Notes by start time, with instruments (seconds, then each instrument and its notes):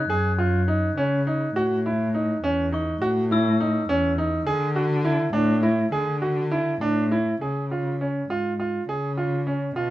Already playing: glockenspiel F#6
0.09 cello F#2, grand piano G#4
0.38 grand piano F4
0.68 grand piano D#4
0.96 cello C#3, grand piano C#4
1.27 grand piano D#4
1.55 cello A2, grand piano F#4
1.86 grand piano E4
2.14 grand piano D#4
2.43 cello E2, grand piano C#4
2.72 grand piano D#4, glockenspiel C#6
3.02 cello A2, grand piano F#4
3.31 grand piano E4, glockenspiel E6
3.60 grand piano D#4
3.89 cello E2, grand piano C#4
4.18 grand piano D#4
4.47 cello D3, grand piano G#4
4.76 grand piano F#4
5.05 grand piano E4
5.33 cello A2, grand piano D4
5.63 grand piano E4
5.92 cello D3, grand piano G#4
6.22 grand piano F#4
6.51 grand piano E4
6.81 cello A2, grand piano D4
7.12 grand piano E4
7.41 cello C#3, grand piano G#4
7.71 grand piano F4
8.01 grand piano C#4
8.29 cello G#2, grand piano F4
8.60 grand piano F4
8.88 cello C#3, grand piano G#4
9.17 grand piano F4
9.47 grand piano C#4
9.75 cello B2, grand piano F4